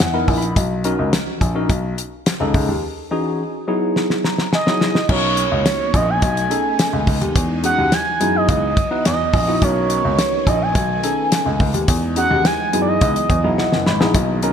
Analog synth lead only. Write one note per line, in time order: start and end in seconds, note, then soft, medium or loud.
4.54 5.06 D#5 medium
5.11 5.97 C#5 loud
5.95 6.11 D#5 loud
6.10 7.08 G#5 loud
7.65 7.95 F#5 loud
7.93 8.37 G#5 loud
8.36 9.06 D#5 loud
9.06 9.65 D#5 loud
9.63 10.50 C#5 loud
10.48 10.64 D#5 medium
10.62 11.61 G#5 loud
12.18 12.47 F#5 loud
12.45 12.81 G#5 loud
12.82 12.89 D5 medium
12.88 13.87 D#5 medium